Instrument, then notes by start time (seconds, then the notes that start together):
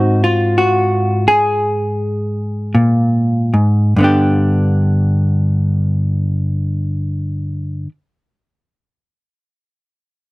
hollow-body jazz guitar
Already playing: G#2 C4 D#4 F#4
0.24 F4
0.58 F#4
1.28 G#4
2.75 A#2
3.54 G#2
3.96 G2 D3 B3
4.03 D4 G4